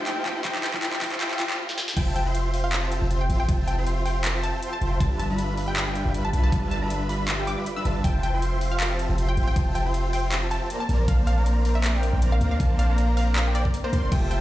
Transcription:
Already playing: A3 A#3 D4 F4 G4, riser
0.00 A#1 A4
0.07 E4 F4 C5 E5 G5 A5, clap, closed hi-hat
0.17 F4
0.26 D2 G4 G5, clap, closed hi-hat
0.36 F4 A4 C5 E5 G5 C6
0.45 A#1 F4 C5 E5 G5 A5, kick, clap, closed hi-hat
0.55 F4, clap
0.64 E4 F4 C5 E5 G5 A5, clap, closed hi-hat
0.74 F4, kick, clap
0.83 E4 F4 C5 E5 G5 A5, clap, closed hi-hat
0.93 F4, clap
1.02 E4 F4 C5 E5 G5 A5, kick, clap, open hi-hat
1.12 F4, clap
1.21 E4 F4 C5 E5 G5 A5, clap, closed hi-hat
1.31 F4, clap
1.40 E4 F4 C5 E5 G5 A5, kick, clap, closed hi-hat
1.50 F4, clap
1.69 snare
1.78 snare
1.88 snare
1.97 F1 F3 C4 F4 G4 A4 C5 E5 G5 A5, kick, closed hi-hat, crash
2.16 G5, closed hi-hat
2.26 F4 C5 E5 G5 C6
2.35 closed hi-hat
2.54 F4 C5 E5 G5 C6, open hi-hat
2.64 F5
2.73 clap, closed hi-hat
2.83 F4 C5 E5 G5 A5
2.92 closed hi-hat
3.02 F1
3.11 F4 C5 E5 G5 C6, closed hi-hat
3.21 G5
3.30 A1, closed hi-hat
3.40 G5
3.49 F1 F4 C5 E5 G5 A5, kick, closed hi-hat
3.68 G5, closed hi-hat
3.78 F4 C5 E5 G5 C6
3.87 closed hi-hat
4.05 F4 C5 E5 G5 C6, open hi-hat
4.25 clap, closed hi-hat
4.35 F4 C5 E5 G5 A5
4.43 A5, closed hi-hat
4.62 F4 C5 E5 G5 C6, closed hi-hat
4.73 A5
4.82 F1, closed hi-hat
5.00 G1 G3 D4 F4 B4 E5 A5, kick, closed hi-hat
5.19 A5, closed hi-hat
5.30 G3 D4 F4 B4 E5 B5
5.38 closed hi-hat
5.57 G3 D4 F4 B4 E5 B5, open hi-hat
5.68 G5
5.76 clap, closed hi-hat
5.87 G3 D4 F4 B4 E5 G5
5.95 closed hi-hat
6.06 G1
6.14 G3 D4 F4 B4 E5 B5, closed hi-hat
6.25 A5
6.33 B1, closed hi-hat
6.44 A5
6.52 G1 G3 D4 F4 B4 E5 A5, kick, closed hi-hat
6.71 A5, closed hi-hat
6.82 G3 D4 F4 B4 E5 B5
6.90 closed hi-hat
7.09 G3 D4 F4 B4 E5 B5, open hi-hat
7.28 clap, closed hi-hat
7.39 G3 D4 F4 B4 E5 G5
7.47 D6, closed hi-hat
7.58 G3 D4 F4 B4 E5 B5
7.66 closed hi-hat
7.76 G3 D4 F4 B4 E5 B5 E6
7.85 G1 G3 D4 F4 B4 E5 A5, closed hi-hat
8.04 F1 F3 C4 F4 G4 C5 E5 G5 A5, kick, closed hi-hat
8.23 G5, closed hi-hat
8.34 F4 C5 E5 G5 C6
8.42 closed hi-hat
8.61 F4 C5 E5 G5 C6, open hi-hat
8.71 F5
8.80 clap, closed hi-hat
8.90 F4 C5 E5 G5 A5
8.99 closed hi-hat
9.10 F1
9.18 F4 C5 E5 G5 C6, closed hi-hat
9.29 G5
9.37 A1, closed hi-hat
9.48 G5
9.56 F1 F4 C5 E5 G5 A5, kick, closed hi-hat
9.75 G5, closed hi-hat
9.85 F4 C5 E5 G5 C6
9.94 closed hi-hat
10.13 F4 C5 E5 G5 C6, open hi-hat
10.32 clap, closed hi-hat
10.42 F4 C5 E5 G5 A5
10.51 A5, closed hi-hat
10.70 A#3 A#4 C5 D5 A#5, closed hi-hat
10.80 A5
10.89 A#1 A#3 C4 D4, closed hi-hat
11.08 A#1 A#3 A#4 C5 D5 F5 A5, kick, closed hi-hat
11.27 F5, closed hi-hat
11.37 A#3 A#4 C5 D5 A#5
11.46 closed hi-hat
11.65 A#3 A#4 C5 D5 A#5, open hi-hat
11.75 E5
11.84 clap, closed hi-hat
11.94 A#3 A#4 C5 D5 G5
12.03 closed hi-hat
12.13 A#1
12.22 A#3 A#4 C5 D5 A#5, closed hi-hat
12.32 F5
12.41 D2, closed hi-hat
12.51 F5
12.60 A#1 A#3 A#4 C5 D5 A5, kick, closed hi-hat
12.79 F5, closed hi-hat
12.89 A#3 A#4 C5 D5 A#5
12.98 closed hi-hat
13.17 A#3 A#4 C5 D5 F5 A#5, open hi-hat
13.36 clap, closed hi-hat
13.46 A#3 A#4 C5 D5 G5
13.55 D5, closed hi-hat
13.65 A#3 A#4 C5 D5 A#5, kick
13.74 closed hi-hat
13.84 A#3 A#4 C5 D5 A#5
13.93 D2 A#3 A#4 C5 D5 C6, closed hi-hat
14.03 F1
14.11 F1 F3 A3 C4 F4 G4 C5 E5 G5 A5, kick, closed hi-hat, crash
14.31 G5, closed hi-hat

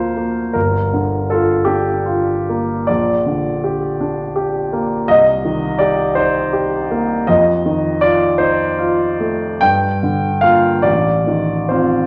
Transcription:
Already playing: D2 F3 A#3 F4 C5 F5
0.17 A#3
0.53 G1 A#4
0.93 D3
1.30 F4 A4
1.65 D4 G4
2.06 F4
2.49 A#3
2.87 A#1 D5
3.26 D3
3.64 G4
4.00 D4
4.36 G4
4.73 A#3
5.08 C2 D#5
5.45 D#3
5.79 G4 D5
6.15 D#4 C5
6.53 G4
6.91 A#3
7.27 F2 D#5
7.66 D#3
8.01 F4 D5
8.38 D#4 C5
8.78 F4
9.20 A3
9.61 G2 G5
10.03 D3
10.41 A#3 F4 F5
10.82 A1 D5
11.27 D#3
11.69 C4 F4 C5

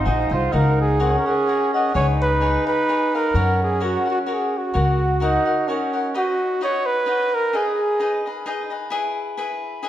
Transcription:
0.05 A#1 D#4 F#4 G#4 C5 D#5
0.31 C2 F4 G#4 C5 D#5
0.52 C#2 D#4 F#4 A#4 C#5 F#5
0.81 G#4
0.99 C#4 F#4 A#4 C#5 F#5
1.19 A#4
1.26 G#4 A#4 C#5 F#5
1.47 F#4 A#4 C#5 F#5
1.74 A#4 C#5 D#5 F#5
1.94 C#2 D#4 G#4 B4 C#5 F5
2.22 B4
2.41 G#4 B4 C#5 F5
2.66 B4 C#5 F5
2.88 G#4 B4 C#5 F5
3.15 A#4 B4 C#5 F5
3.34 F#2 C#4 F#4 A#4 C#5 F#5
3.62 G#4
3.80 F#4 A#4 C#5 F#5
4.06 A#4 C#5 F#5
4.10 F#4
4.26 F#4 A#4 C#5 F#5
4.32 G#4
4.58 F#4
4.74 C#2 F#4 A#4 C#5 F#5
5.20 D#4 F#4 A#4 C#5 F#5
5.45 A#4 C#5 F#5
5.68 C#4 F#4 A#4 C#5 F#5
5.93 A#4 C#5 F#5
6.14 D#4 F#4 B4 D#5 F#5
6.61 D#4 B4 C#5 D#5 F#5
6.86 B4
7.06 D#4 B4 D#5 F#5
7.34 A#4
7.53 D#4 G#4 B4 D#5
8.00 D#4 G#4 B4 D#5
8.26 G#4 B4 D#5
8.46 D#4 G#4 B4 D#5
8.70 G#4 B4 D#5
8.90 E4 G#4 B4 E5
9.37 E4 G#4 B4 E5
9.82 E4 G#4 B4 E5

